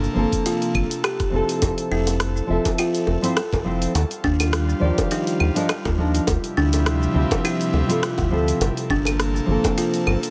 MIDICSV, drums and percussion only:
0, 0, Header, 1, 2, 480
1, 0, Start_track
1, 0, Tempo, 582524
1, 1334, Time_signature, 4, 2, 24, 8
1, 8489, End_track
2, 0, Start_track
2, 0, Title_t, "Drums"
2, 32, Note_on_c, 9, 82, 34
2, 114, Note_off_c, 9, 82, 0
2, 267, Note_on_c, 9, 36, 91
2, 270, Note_on_c, 9, 46, 47
2, 272, Note_on_c, 9, 82, 69
2, 349, Note_off_c, 9, 36, 0
2, 352, Note_off_c, 9, 46, 0
2, 354, Note_off_c, 9, 82, 0
2, 377, Note_on_c, 9, 46, 61
2, 380, Note_on_c, 9, 82, 51
2, 460, Note_off_c, 9, 46, 0
2, 462, Note_off_c, 9, 82, 0
2, 511, Note_on_c, 9, 46, 31
2, 513, Note_on_c, 9, 82, 33
2, 593, Note_off_c, 9, 46, 0
2, 595, Note_off_c, 9, 82, 0
2, 616, Note_on_c, 9, 36, 60
2, 618, Note_on_c, 9, 75, 69
2, 698, Note_off_c, 9, 36, 0
2, 700, Note_off_c, 9, 75, 0
2, 751, Note_on_c, 9, 46, 46
2, 753, Note_on_c, 9, 82, 62
2, 834, Note_off_c, 9, 46, 0
2, 836, Note_off_c, 9, 82, 0
2, 857, Note_on_c, 9, 37, 100
2, 857, Note_on_c, 9, 46, 55
2, 857, Note_on_c, 9, 75, 80
2, 859, Note_on_c, 9, 82, 52
2, 939, Note_off_c, 9, 37, 0
2, 939, Note_off_c, 9, 46, 0
2, 939, Note_off_c, 9, 75, 0
2, 942, Note_off_c, 9, 82, 0
2, 987, Note_on_c, 9, 36, 109
2, 990, Note_on_c, 9, 37, 33
2, 990, Note_on_c, 9, 46, 33
2, 992, Note_on_c, 9, 82, 32
2, 1070, Note_off_c, 9, 36, 0
2, 1072, Note_off_c, 9, 37, 0
2, 1072, Note_off_c, 9, 46, 0
2, 1074, Note_off_c, 9, 82, 0
2, 1228, Note_on_c, 9, 46, 45
2, 1230, Note_on_c, 9, 82, 58
2, 1310, Note_off_c, 9, 46, 0
2, 1312, Note_off_c, 9, 82, 0
2, 1334, Note_on_c, 9, 46, 62
2, 1335, Note_on_c, 9, 36, 125
2, 1336, Note_on_c, 9, 82, 54
2, 1337, Note_on_c, 9, 60, 85
2, 1416, Note_off_c, 9, 46, 0
2, 1418, Note_off_c, 9, 36, 0
2, 1418, Note_off_c, 9, 82, 0
2, 1420, Note_off_c, 9, 60, 0
2, 1465, Note_on_c, 9, 46, 35
2, 1468, Note_on_c, 9, 82, 35
2, 1548, Note_off_c, 9, 46, 0
2, 1550, Note_off_c, 9, 82, 0
2, 1703, Note_on_c, 9, 60, 60
2, 1706, Note_on_c, 9, 46, 47
2, 1708, Note_on_c, 9, 82, 71
2, 1786, Note_off_c, 9, 60, 0
2, 1788, Note_off_c, 9, 46, 0
2, 1791, Note_off_c, 9, 82, 0
2, 1813, Note_on_c, 9, 37, 93
2, 1813, Note_on_c, 9, 46, 54
2, 1815, Note_on_c, 9, 82, 55
2, 1895, Note_off_c, 9, 37, 0
2, 1895, Note_off_c, 9, 46, 0
2, 1897, Note_off_c, 9, 82, 0
2, 1949, Note_on_c, 9, 82, 37
2, 2031, Note_off_c, 9, 82, 0
2, 2186, Note_on_c, 9, 36, 92
2, 2186, Note_on_c, 9, 46, 47
2, 2187, Note_on_c, 9, 60, 94
2, 2188, Note_on_c, 9, 82, 69
2, 2269, Note_off_c, 9, 36, 0
2, 2269, Note_off_c, 9, 46, 0
2, 2269, Note_off_c, 9, 60, 0
2, 2271, Note_off_c, 9, 82, 0
2, 2294, Note_on_c, 9, 46, 55
2, 2294, Note_on_c, 9, 75, 62
2, 2296, Note_on_c, 9, 82, 52
2, 2376, Note_off_c, 9, 46, 0
2, 2376, Note_off_c, 9, 75, 0
2, 2378, Note_off_c, 9, 82, 0
2, 2428, Note_on_c, 9, 46, 31
2, 2430, Note_on_c, 9, 82, 34
2, 2510, Note_off_c, 9, 46, 0
2, 2512, Note_off_c, 9, 82, 0
2, 2530, Note_on_c, 9, 60, 62
2, 2612, Note_off_c, 9, 60, 0
2, 2668, Note_on_c, 9, 46, 46
2, 2670, Note_on_c, 9, 82, 63
2, 2750, Note_off_c, 9, 46, 0
2, 2752, Note_off_c, 9, 82, 0
2, 2774, Note_on_c, 9, 37, 109
2, 2774, Note_on_c, 9, 46, 59
2, 2777, Note_on_c, 9, 82, 56
2, 2857, Note_off_c, 9, 37, 0
2, 2857, Note_off_c, 9, 46, 0
2, 2859, Note_off_c, 9, 82, 0
2, 2905, Note_on_c, 9, 36, 102
2, 2910, Note_on_c, 9, 82, 33
2, 2913, Note_on_c, 9, 60, 92
2, 2988, Note_off_c, 9, 36, 0
2, 2992, Note_off_c, 9, 82, 0
2, 2995, Note_off_c, 9, 60, 0
2, 3146, Note_on_c, 9, 46, 43
2, 3148, Note_on_c, 9, 82, 64
2, 3228, Note_off_c, 9, 46, 0
2, 3231, Note_off_c, 9, 82, 0
2, 3256, Note_on_c, 9, 46, 59
2, 3256, Note_on_c, 9, 60, 98
2, 3258, Note_on_c, 9, 82, 60
2, 3338, Note_off_c, 9, 46, 0
2, 3339, Note_off_c, 9, 60, 0
2, 3340, Note_off_c, 9, 82, 0
2, 3386, Note_on_c, 9, 46, 31
2, 3389, Note_on_c, 9, 82, 35
2, 3469, Note_off_c, 9, 46, 0
2, 3471, Note_off_c, 9, 82, 0
2, 3493, Note_on_c, 9, 36, 64
2, 3576, Note_off_c, 9, 36, 0
2, 3625, Note_on_c, 9, 46, 50
2, 3625, Note_on_c, 9, 75, 63
2, 3627, Note_on_c, 9, 60, 62
2, 3627, Note_on_c, 9, 82, 75
2, 3707, Note_off_c, 9, 46, 0
2, 3707, Note_off_c, 9, 75, 0
2, 3709, Note_off_c, 9, 82, 0
2, 3710, Note_off_c, 9, 60, 0
2, 3733, Note_on_c, 9, 37, 98
2, 3733, Note_on_c, 9, 46, 52
2, 3735, Note_on_c, 9, 82, 50
2, 3815, Note_off_c, 9, 37, 0
2, 3815, Note_off_c, 9, 46, 0
2, 3817, Note_off_c, 9, 82, 0
2, 3869, Note_on_c, 9, 82, 36
2, 3951, Note_off_c, 9, 82, 0
2, 4104, Note_on_c, 9, 36, 105
2, 4104, Note_on_c, 9, 46, 49
2, 4106, Note_on_c, 9, 60, 91
2, 4106, Note_on_c, 9, 82, 72
2, 4186, Note_off_c, 9, 36, 0
2, 4187, Note_off_c, 9, 46, 0
2, 4189, Note_off_c, 9, 60, 0
2, 4189, Note_off_c, 9, 82, 0
2, 4210, Note_on_c, 9, 46, 56
2, 4213, Note_on_c, 9, 82, 53
2, 4293, Note_off_c, 9, 46, 0
2, 4295, Note_off_c, 9, 82, 0
2, 4344, Note_on_c, 9, 46, 32
2, 4346, Note_on_c, 9, 82, 31
2, 4427, Note_off_c, 9, 46, 0
2, 4429, Note_off_c, 9, 82, 0
2, 4449, Note_on_c, 9, 60, 67
2, 4451, Note_on_c, 9, 75, 59
2, 4532, Note_off_c, 9, 60, 0
2, 4534, Note_off_c, 9, 75, 0
2, 4583, Note_on_c, 9, 46, 44
2, 4585, Note_on_c, 9, 82, 73
2, 4666, Note_off_c, 9, 46, 0
2, 4668, Note_off_c, 9, 82, 0
2, 4690, Note_on_c, 9, 37, 106
2, 4690, Note_on_c, 9, 46, 55
2, 4690, Note_on_c, 9, 75, 77
2, 4692, Note_on_c, 9, 82, 59
2, 4772, Note_off_c, 9, 37, 0
2, 4772, Note_off_c, 9, 46, 0
2, 4772, Note_off_c, 9, 75, 0
2, 4775, Note_off_c, 9, 82, 0
2, 4823, Note_on_c, 9, 37, 35
2, 4823, Note_on_c, 9, 60, 97
2, 4824, Note_on_c, 9, 36, 109
2, 4825, Note_on_c, 9, 82, 33
2, 4906, Note_off_c, 9, 36, 0
2, 4906, Note_off_c, 9, 37, 0
2, 4906, Note_off_c, 9, 60, 0
2, 4908, Note_off_c, 9, 82, 0
2, 5064, Note_on_c, 9, 46, 42
2, 5067, Note_on_c, 9, 82, 66
2, 5147, Note_off_c, 9, 46, 0
2, 5149, Note_off_c, 9, 82, 0
2, 5169, Note_on_c, 9, 60, 92
2, 5172, Note_on_c, 9, 36, 117
2, 5172, Note_on_c, 9, 46, 57
2, 5175, Note_on_c, 9, 82, 61
2, 5251, Note_off_c, 9, 60, 0
2, 5255, Note_off_c, 9, 36, 0
2, 5255, Note_off_c, 9, 46, 0
2, 5257, Note_off_c, 9, 82, 0
2, 5305, Note_on_c, 9, 46, 30
2, 5307, Note_on_c, 9, 82, 37
2, 5388, Note_off_c, 9, 46, 0
2, 5390, Note_off_c, 9, 82, 0
2, 5545, Note_on_c, 9, 46, 48
2, 5547, Note_on_c, 9, 82, 75
2, 5550, Note_on_c, 9, 60, 71
2, 5627, Note_off_c, 9, 46, 0
2, 5630, Note_off_c, 9, 82, 0
2, 5633, Note_off_c, 9, 60, 0
2, 5655, Note_on_c, 9, 37, 99
2, 5655, Note_on_c, 9, 46, 48
2, 5657, Note_on_c, 9, 82, 54
2, 5737, Note_off_c, 9, 37, 0
2, 5737, Note_off_c, 9, 46, 0
2, 5739, Note_off_c, 9, 82, 0
2, 5788, Note_on_c, 9, 82, 37
2, 5871, Note_off_c, 9, 82, 0
2, 6025, Note_on_c, 9, 36, 105
2, 6028, Note_on_c, 9, 46, 44
2, 6029, Note_on_c, 9, 60, 110
2, 6030, Note_on_c, 9, 82, 76
2, 6107, Note_off_c, 9, 36, 0
2, 6110, Note_off_c, 9, 46, 0
2, 6112, Note_off_c, 9, 60, 0
2, 6113, Note_off_c, 9, 82, 0
2, 6137, Note_on_c, 9, 46, 53
2, 6137, Note_on_c, 9, 75, 58
2, 6139, Note_on_c, 9, 82, 56
2, 6219, Note_off_c, 9, 46, 0
2, 6219, Note_off_c, 9, 75, 0
2, 6221, Note_off_c, 9, 82, 0
2, 6269, Note_on_c, 9, 46, 28
2, 6271, Note_on_c, 9, 82, 35
2, 6351, Note_off_c, 9, 46, 0
2, 6354, Note_off_c, 9, 82, 0
2, 6375, Note_on_c, 9, 60, 68
2, 6457, Note_off_c, 9, 60, 0
2, 6507, Note_on_c, 9, 46, 41
2, 6509, Note_on_c, 9, 82, 71
2, 6589, Note_off_c, 9, 46, 0
2, 6591, Note_off_c, 9, 82, 0
2, 6617, Note_on_c, 9, 37, 99
2, 6617, Note_on_c, 9, 46, 55
2, 6619, Note_on_c, 9, 82, 57
2, 6699, Note_off_c, 9, 37, 0
2, 6699, Note_off_c, 9, 46, 0
2, 6701, Note_off_c, 9, 82, 0
2, 6738, Note_on_c, 9, 60, 88
2, 6745, Note_on_c, 9, 36, 117
2, 6750, Note_on_c, 9, 82, 37
2, 6821, Note_off_c, 9, 60, 0
2, 6827, Note_off_c, 9, 36, 0
2, 6832, Note_off_c, 9, 82, 0
2, 6989, Note_on_c, 9, 46, 40
2, 6991, Note_on_c, 9, 82, 69
2, 7071, Note_off_c, 9, 46, 0
2, 7073, Note_off_c, 9, 82, 0
2, 7095, Note_on_c, 9, 46, 53
2, 7098, Note_on_c, 9, 82, 60
2, 7099, Note_on_c, 9, 60, 93
2, 7178, Note_off_c, 9, 46, 0
2, 7180, Note_off_c, 9, 82, 0
2, 7181, Note_off_c, 9, 60, 0
2, 7229, Note_on_c, 9, 46, 32
2, 7231, Note_on_c, 9, 82, 35
2, 7311, Note_off_c, 9, 46, 0
2, 7313, Note_off_c, 9, 82, 0
2, 7333, Note_on_c, 9, 36, 61
2, 7416, Note_off_c, 9, 36, 0
2, 7459, Note_on_c, 9, 60, 72
2, 7470, Note_on_c, 9, 46, 45
2, 7470, Note_on_c, 9, 75, 61
2, 7473, Note_on_c, 9, 82, 72
2, 7541, Note_off_c, 9, 60, 0
2, 7553, Note_off_c, 9, 46, 0
2, 7553, Note_off_c, 9, 75, 0
2, 7555, Note_off_c, 9, 82, 0
2, 7577, Note_on_c, 9, 37, 92
2, 7577, Note_on_c, 9, 46, 51
2, 7579, Note_on_c, 9, 82, 55
2, 7660, Note_off_c, 9, 37, 0
2, 7660, Note_off_c, 9, 46, 0
2, 7662, Note_off_c, 9, 82, 0
2, 7713, Note_on_c, 9, 82, 38
2, 7795, Note_off_c, 9, 82, 0
2, 7945, Note_on_c, 9, 36, 105
2, 7949, Note_on_c, 9, 46, 44
2, 7949, Note_on_c, 9, 60, 101
2, 7951, Note_on_c, 9, 82, 76
2, 8028, Note_off_c, 9, 36, 0
2, 8031, Note_off_c, 9, 46, 0
2, 8031, Note_off_c, 9, 60, 0
2, 8033, Note_off_c, 9, 82, 0
2, 8056, Note_on_c, 9, 46, 53
2, 8058, Note_on_c, 9, 82, 54
2, 8139, Note_off_c, 9, 46, 0
2, 8141, Note_off_c, 9, 82, 0
2, 8188, Note_on_c, 9, 46, 29
2, 8190, Note_on_c, 9, 82, 34
2, 8270, Note_off_c, 9, 46, 0
2, 8273, Note_off_c, 9, 82, 0
2, 8295, Note_on_c, 9, 60, 68
2, 8298, Note_on_c, 9, 75, 61
2, 8378, Note_off_c, 9, 60, 0
2, 8381, Note_off_c, 9, 75, 0
2, 8432, Note_on_c, 9, 46, 42
2, 8434, Note_on_c, 9, 82, 71
2, 8489, Note_off_c, 9, 46, 0
2, 8489, Note_off_c, 9, 82, 0
2, 8489, End_track
0, 0, End_of_file